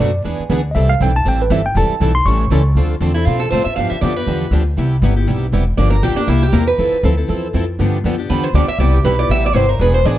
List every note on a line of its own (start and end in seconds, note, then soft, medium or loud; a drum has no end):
0.00 0.24 F#2 medium
0.00 0.10 B2 medium
0.00 0.10 F#3 medium
0.00 0.10 A3 medium
0.00 0.10 D4 medium
0.00 0.10 F#4 medium
0.00 0.10 B4 medium
0.00 0.21 D5 medium
0.25 0.38 E2 medium
0.25 0.43 E3 medium
0.25 0.43 B3 medium
0.25 0.43 D4 medium
0.25 0.43 G#4 medium
0.25 0.43 B4 medium
0.40 muted upright bass stroke soft
0.50 0.74 D2 medium
0.50 0.60 E3 medium
0.50 0.60 B3 medium
0.50 0.61 D4 medium
0.50 0.61 G#4 medium
0.50 0.60 B4 medium
0.71 0.99 C2 medium
0.71 0.93 E3 medium
0.71 0.73 D#5 medium
0.71 0.88 E5 medium
0.75 0.93 G3 medium
0.75 0.93 C4 medium
0.75 0.93 E4 medium
0.75 0.93 A4 medium
0.89 1.00 F5 loud
1.01 1.25 B1 medium
1.01 1.11 E3 medium
1.01 1.11 G3 medium
1.01 1.11 C4 medium
1.01 1.11 E4 medium
1.01 1.11 A4 medium
1.01 1.15 G5 medium
1.16 1.26 A5 loud
1.25 1.50 A1 medium
1.25 1.43 E3 medium
1.25 1.43 G3 medium
1.25 1.43 C4 medium
1.25 1.43 E4 medium
1.25 1.44 A4 medium
1.25 1.40 G5 medium
1.42 1.51 B4 medium
1.50 1.74 G1 medium
1.50 1.60 E3 medium
1.50 1.60 G3 medium
1.50 1.60 C4 medium
1.50 1.61 E4 medium
1.50 1.61 A4 loud
1.50 1.65 E5 medium
1.66 1.76 G5 loud
1.75 1.88 E1 medium
1.75 1.93 E3 medium
1.75 1.94 G3 medium
1.75 1.94 C4 medium
1.75 1.94 E4 medium
1.75 1.94 A4 medium
1.75 2.13 A5 medium
1.89 muted upright bass stroke soft
2.00 2.25 B1 medium
2.00 2.11 E3 medium
2.00 2.11 G3 medium
2.00 2.11 C4 medium
2.00 2.11 E4 medium
2.00 2.11 A4 medium
2.15 2.25 C6 loud
2.25 2.50 A1 medium
2.25 2.44 E3 medium
2.25 2.44 G3 medium
2.25 2.44 C#4 medium
2.25 2.44 E4 medium
2.25 2.44 A4 medium
2.25 2.49 C#6 loud
2.50 2.74 C#2 medium
2.50 2.61 E3 medium
2.50 2.61 G3 medium
2.50 2.61 C#4 medium
2.50 2.61 E4 medium
2.50 2.62 A4 medium
2.75 3.00 D2 medium
2.75 2.94 D3 medium
2.75 2.94 F3 medium
2.75 2.94 A3 medium
2.75 2.94 C4 medium
2.75 2.95 D4 medium
2.75 2.94 F4 medium
2.75 2.94 A4 medium
3.00 3.25 E2 medium
3.00 3.11 D3 medium
3.00 3.11 F3 medium
3.00 3.11 A3 medium
3.00 3.11 C4 medium
3.00 3.11 D4 medium
3.00 3.12 F4 medium
3.00 3.12 A4 medium
3.14 3.27 C4 soft
3.14 3.26 D4 soft
3.14 3.26 E4 medium
3.14 3.26 A4 medium
3.26 3.51 B2 medium
3.26 3.45 D3 medium
3.26 3.45 F3 medium
3.26 3.45 A3 medium
3.26 3.45 C4 medium
3.26 3.45 D4 medium
3.26 3.40 F4 medium
3.26 3.45 F4 medium
3.26 3.45 A4 medium
3.39 3.50 A4 medium
3.50 3.65 A2 medium
3.50 3.62 D3 medium
3.50 3.62 F3 medium
3.50 3.62 A3 medium
3.50 3.62 C4 medium
3.50 3.63 D4 medium
3.50 3.62 F4 medium
3.50 3.63 A4 medium
3.50 3.64 C5 medium
3.64 3.75 E5 medium
3.64 muted upright bass stroke soft
3.76 3.90 G2 medium
3.76 3.95 D3 medium
3.76 3.96 F3 medium
3.76 3.96 B3 medium
3.76 3.96 D4 medium
3.76 3.96 G4 medium
3.76 3.89 F5 medium
3.90 4.01 E5 medium
3.90 muted upright bass stroke soft
4.01 4.26 F2 medium
4.01 4.13 D3 medium
4.01 4.13 F3 medium
4.01 4.13 B3 medium
4.01 4.13 D4 medium
4.01 4.13 G4 medium
4.01 4.16 D5 medium
4.16 4.26 B3 soft
4.16 4.26 D4 soft
4.16 4.26 G4 medium
4.16 4.52 B4 medium
4.27 4.50 E2 medium
4.27 4.45 D3 medium
4.27 4.45 F3 medium
4.27 4.45 B3 medium
4.27 4.45 D4 medium
4.27 4.45 G4 medium
4.51 4.76 D2 medium
4.51 4.62 D3 medium
4.51 4.62 F3 medium
4.51 4.62 B3 medium
4.51 4.62 D4 medium
4.51 4.62 G4 medium
4.77 5.01 C2 medium
4.77 4.95 C3 medium
4.77 4.95 G3 medium
4.77 4.96 B3 medium
4.77 4.96 E4 medium
4.77 4.96 G4 medium
5.02 5.26 G1 medium
5.02 5.13 C3 medium
5.02 5.13 G3 medium
5.02 5.13 B3 medium
5.02 5.13 E4 medium
5.02 5.13 G4 medium
5.16 5.26 B3 soft
5.16 5.27 E4 soft
5.16 5.27 G4 medium
5.27 5.52 B1 medium
5.27 5.45 C3 medium
5.27 5.45 G3 medium
5.27 5.45 B3 medium
5.27 5.46 E4 medium
5.27 5.46 G4 medium
5.52 5.77 E1 medium
5.52 5.63 C3 medium
5.52 5.63 G3 medium
5.52 5.63 B3 medium
5.52 5.63 E4 medium
5.52 5.63 G4 medium
5.77 6.02 G1 medium
5.77 5.96 D3 medium
5.77 5.96 F3 medium
5.77 5.96 A#3 medium
5.77 5.96 D4 medium
5.77 5.96 G4 medium
5.77 5.90 D5 medium
5.90 6.02 A#4 medium
6.03 6.16 A#1 medium
6.03 6.13 D3 medium
6.03 6.13 F3 medium
6.03 6.13 A#3 medium
6.03 6.13 D4 medium
6.03 6.17 G4 medium
6.03 6.13 G4 medium
6.16 6.28 A#3 soft
6.16 6.27 D4 medium
6.16 6.28 D4 soft
6.16 6.27 G4 medium
6.16 muted upright bass stroke soft
6.27 6.52 C2 medium
6.27 6.46 C3 medium
6.27 6.46 G3 medium
6.27 6.46 A#3 medium
6.27 6.42 E4 medium
6.27 6.47 E4 medium
6.27 6.47 G4 medium
6.43 6.53 G4 medium
6.52 6.77 E2 medium
6.52 6.63 C3 medium
6.52 6.63 G3 medium
6.52 6.63 A#3 medium
6.52 6.63 E4 medium
6.52 6.63 G4 medium
6.52 6.67 A#4 medium
6.67 7.01 B4 medium
6.78 6.91 F2 medium
6.78 6.96 F3 medium
6.78 6.96 C4 medium
6.78 6.96 E4 medium
6.78 6.97 A4 medium
6.93 muted upright bass stroke soft
7.03 7.28 D2 medium
7.03 7.14 F3 medium
7.03 7.14 C4 medium
7.03 7.14 E4 medium
7.03 7.14 A4 medium
7.17 7.27 C4 soft
7.17 7.27 E4 medium
7.17 7.27 A4 medium
7.27 7.53 E2 medium
7.27 7.46 F3 medium
7.27 7.46 C4 medium
7.27 7.46 E4 medium
7.27 7.47 A4 medium
7.54 7.78 F2 medium
7.54 7.64 F3 medium
7.54 7.64 C4 medium
7.54 7.65 E4 medium
7.54 7.65 A4 medium
7.79 8.03 G2 medium
7.79 7.97 D3 medium
7.79 7.97 F3 medium
7.79 7.98 B3 medium
7.79 7.98 D4 medium
7.79 7.98 G4 medium
8.04 8.28 F2 medium
8.04 8.15 D3 medium
8.04 8.15 F3 medium
8.04 8.15 B3 medium
8.04 8.15 D4 medium
8.04 8.15 G4 medium
8.18 8.29 B3 soft
8.18 8.29 D4 medium
8.18 8.29 G4 medium
8.29 8.53 E2 medium
8.29 8.47 D3 medium
8.29 8.47 F3 medium
8.29 8.48 B3 medium
8.29 8.48 D4 medium
8.29 8.48 G4 medium
8.29 8.43 B4 medium
8.43 8.54 C5 medium
8.54 8.67 D2 medium
8.54 8.65 D3 medium
8.54 8.65 F3 medium
8.54 8.65 B3 medium
8.54 8.65 D4 medium
8.54 8.65 G4 medium
8.54 8.68 D5 medium
8.68 8.79 E5 loud
8.79 9.03 C2 medium
8.79 8.97 C3 medium
8.79 8.97 G3 medium
8.79 8.98 B3 medium
8.79 8.98 E4 medium
8.79 8.98 G4 medium
8.79 8.93 D5 medium
8.94 9.05 G4 soft
9.04 9.28 B1 loud
9.04 9.15 C3 medium
9.04 9.15 G3 medium
9.04 9.15 B3 medium
9.04 9.15 E4 medium
9.04 9.15 G4 medium
9.04 9.18 B4 medium
9.19 9.29 B3 medium
9.19 9.29 E4 medium
9.19 9.29 G4 medium
9.19 9.29 D5 loud
9.29 9.54 A1 medium
9.29 9.47 C3 medium
9.29 9.47 G3 medium
9.29 9.48 B3 medium
9.29 9.48 E4 medium
9.29 9.48 G4 medium
9.29 9.44 E5 medium
9.46 9.55 D5 medium
9.54 9.79 G1 medium
9.54 9.65 C3 medium
9.54 9.65 G3 medium
9.54 9.65 B3 medium
9.54 9.65 E4 medium
9.54 9.65 G4 medium
9.54 9.69 C5 medium
9.69 9.80 A#4 medium
9.79 10.04 E1 medium
9.79 9.98 E3 medium
9.79 9.99 B3 medium
9.79 9.99 D4 medium
9.79 9.99 G#4 medium
9.79 9.93 B4 medium
9.79 9.99 B4 medium
9.94 10.05 C5 medium
10.05 10.18 A1 medium
10.05 10.15 E3 medium
10.05 10.15 B3 medium
10.05 10.15 D4 medium
10.05 10.16 G#4 loud
10.05 10.16 B4 loud
10.05 10.18 D5 medium